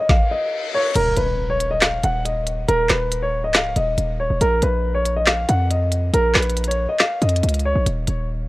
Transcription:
0.09 grand piano F5, kick, snare, reverse cymbal
0.31 grand piano D#5
0.75 grand piano C#5
0.95 808-style bass D#1, grand piano A#4, closed hi-hat, crash, impact
1.17 808-style bass D#1, grand piano B4, closed hi-hat
1.50 grand piano C#5
1.60 closed hi-hat
1.71 grand piano D#5
1.81 grand piano F5, snare, clap, closed hi-hat
2.03 808-style bass D#1, grand piano F#5, closed hi-hat
2.25 grand piano D#5, closed hi-hat
2.46 closed hi-hat
2.68 808-style bass D#1, grand piano A#4, closed hi-hat
2.89 808-style bass D#1, grand piano B4, snare, clap, closed hi-hat
3.12 closed hi-hat
3.22 grand piano C#5
3.44 808-style bass C#1, grand piano D#5
3.54 grand piano F5, snare, clap, closed hi-hat
3.76 808-style bass D#1, grand piano D#5, closed hi-hat
3.98 808-style bass D#1, closed hi-hat
4.20 grand piano C#5
4.30 808-style bass D#1
4.41 808-style bass A#1, grand piano A#4, closed hi-hat
4.62 808-style bass A#1, grand piano B4, closed hi-hat
4.95 grand piano C#5
5.06 closed hi-hat
5.17 grand piano D#5
5.27 grand piano F5, snare, clap, closed hi-hat
5.49 808-style bass F2, grand piano F#5, closed hi-hat
5.71 grand piano D#5, closed hi-hat
5.92 closed hi-hat
6.14 808-style bass A#1, grand piano A#4, closed hi-hat
6.34 808-style bass A#1, snare, clap, closed hi-hat
6.42 closed hi-hat
6.50 closed hi-hat
6.57 closed hi-hat
6.64 grand piano C#5, closed hi-hat
6.71 closed hi-hat
6.89 grand piano D#5
6.99 grand piano F5, snare, clap, closed hi-hat
7.21 808-style bass F2, grand piano D#5, closed hi-hat
7.29 closed hi-hat
7.36 closed hi-hat
7.43 808-style bass C#2, closed hi-hat
7.48 closed hi-hat
7.54 closed hi-hat
7.59 closed hi-hat
7.65 grand piano C#5
7.75 808-style bass A#1
7.86 808-style bass D#1, closed hi-hat
8.07 808-style bass D#1, closed hi-hat

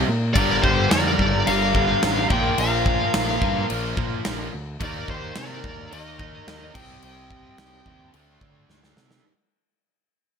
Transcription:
0.08 picked electric bass A#2
0.34 picked electric bass G1, distorted electric guitar G2 D3 G3, lead electric guitar A#4 D5, kick, crash
0.62 picked electric bass G1, lead electric guitar G4 C5, kick
0.90 picked electric bass F2, lead electric guitar A#4 D5, snare, crash
1.19 picked electric bass G1, kick
1.47 picked electric bass G1, overdriven electric guitar G2 D3 G3, lead electric guitar A#4 F5, crash
1.73 distorted electric guitar G2 D3 G3, kick
2.01 picked electric bass A1, distorted electric guitar G2 D3 G3, snare, crash
2.29 picked electric bass A#1, distorted electric guitar A#2 F3 A#3, lead electric guitar D5 G5, kick
2.58 picked electric bass A#1, lead electric guitar A#4 F5, crash
2.86 kick
3.14 picked electric bass A#1, snare, crash
3.41 picked electric bass G2, overdriven electric guitar A#2 F3 A#3, kick
3.68 picked electric bass A#1, distorted electric guitar A#2 F3 A#3, crash
3.96 picked electric bass A#2, distorted electric guitar A#2 F3 A#3, kick
4.25 picked electric bass A#1, snare, crash
4.54 picked electric bass D2
4.80 picked electric bass D#2, distorted electric guitar D#3 A#3 D#4, lead electric guitar D5, kick, crash
4.85 lead electric guitar A#4
5.08 picked electric bass D#2, lead electric guitar C5, kick
5.13 lead electric guitar G4
5.35 picked electric bass C3, lead electric guitar D5, snare, crash
5.40 lead electric guitar A#4
5.64 picked electric bass D#2, kick
5.90 picked electric bass D#2, overdriven electric guitar D#3 A#3 D#4, lead electric guitar A#4 D#5, crash
6.18 distorted electric guitar A#3 D#4, kick
6.23 distorted electric guitar D#3
6.45 picked electric bass D#2, distorted electric guitar D#3 A#3 D#4, snare, crash
6.73 picked electric bass C2, distorted electric guitar C3 G3 C4, lead electric guitar D#5 G5, kick, crash
7.02 picked electric bass C2, lead electric guitar D#5 G5, crash
7.31 kick
7.58 picked electric bass C2, snare, crash
7.85 picked electric bass D#2, overdriven electric guitar C3 G3 C4, kick
8.13 picked electric bass D2, distorted electric guitar D3 A3 D4, crash
8.41 picked electric bass D3, kick
8.69 picked electric bass D2, snare
8.83 snare
8.96 picked electric bass C3, snare
9.11 snare

